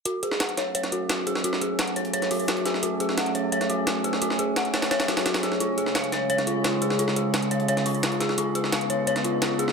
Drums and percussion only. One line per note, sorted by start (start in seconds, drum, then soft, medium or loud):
0.05 closed hi-hat medium
0.23 closed hi-hat medium
0.31 snare soft
0.40 snare loud
0.40 closed hi-hat medium
0.49 closed hi-hat soft
0.57 snare soft
0.57 closed hi-hat medium
0.75 closed hi-hat medium
0.75 closed hi-hat loud
0.83 snare soft
0.83 closed hi-hat soft
0.92 closed hi-hat medium
1.09 snare loud
1.09 closed hi-hat medium
1.27 closed hi-hat medium
1.35 snare medium
1.44 closed hi-hat medium
1.53 snare soft
1.61 closed hi-hat medium
1.79 snare loud
1.79 closed hi-hat medium
1.88 closed hi-hat soft
1.96 closed hi-hat medium
2.05 closed hi-hat soft
2.13 closed hi-hat medium
2.22 snare soft
2.22 closed hi-hat soft
2.31 closed hi-hat medium
2.31 open hi-hat medium
2.40 closed hi-hat soft
2.48 snare loud
2.48 closed hi-hat medium
2.57 closed hi-hat soft
2.65 snare soft
2.65 closed hi-hat medium
2.74 snare soft
2.83 closed hi-hat medium
3.00 closed hi-hat medium
3.09 snare soft
3.18 snare loud
3.18 closed hi-hat medium
3.26 closed hi-hat soft
3.35 closed hi-hat medium
3.52 closed hi-hat medium
3.61 snare soft
3.61 closed hi-hat soft
3.70 closed hi-hat medium
3.87 snare loud
3.87 closed hi-hat medium
4.04 closed hi-hat medium
4.13 snare medium
4.22 closed hi-hat medium
4.30 snare medium
4.39 closed hi-hat medium
4.56 snare loud
4.56 closed hi-hat medium
4.65 closed hi-hat soft
4.74 snare loud
4.74 closed hi-hat medium
4.82 snare loud
4.82 closed hi-hat medium
4.91 snare loud
4.91 closed hi-hat medium
5.00 snare loud
5.00 closed hi-hat medium
5.00 closed hi-hat soft
5.08 snare loud
5.08 closed hi-hat medium
5.17 snare loud
5.17 closed hi-hat medium
5.17 closed hi-hat soft
5.26 snare loud
5.26 closed hi-hat medium
5.34 snare loud
5.34 closed hi-hat medium
5.43 snare soft
5.43 closed hi-hat medium
5.52 snare soft
5.60 closed hi-hat medium
5.78 closed hi-hat medium
5.86 snare soft
5.95 snare loud
5.95 closed hi-hat medium
6.04 closed hi-hat soft
6.12 snare soft
6.12 closed hi-hat medium
6.30 closed hi-hat medium
6.38 snare soft
6.38 closed hi-hat soft
6.47 closed hi-hat medium
6.64 snare loud
6.64 closed hi-hat medium
6.82 closed hi-hat medium
6.90 snare medium
6.99 closed hi-hat medium
7.08 snare medium
7.16 closed hi-hat medium
7.34 snare loud
7.34 closed hi-hat medium
7.42 closed hi-hat soft
7.51 closed hi-hat medium
7.60 closed hi-hat soft
7.68 closed hi-hat medium
7.77 snare soft
7.77 closed hi-hat soft
7.86 closed hi-hat medium
7.86 open hi-hat medium
7.95 closed hi-hat soft
8.03 snare loud
8.03 closed hi-hat medium
8.12 closed hi-hat soft
8.20 snare soft
8.20 closed hi-hat medium
8.29 snare soft
8.38 closed hi-hat medium
8.55 closed hi-hat medium
8.64 snare soft
8.72 snare loud
8.72 closed hi-hat medium
8.81 closed hi-hat soft
8.90 closed hi-hat medium
9.07 closed hi-hat medium
9.16 snare soft
9.16 closed hi-hat soft
9.24 closed hi-hat medium
9.42 snare loud
9.42 closed hi-hat medium
9.59 closed hi-hat medium
9.68 snare medium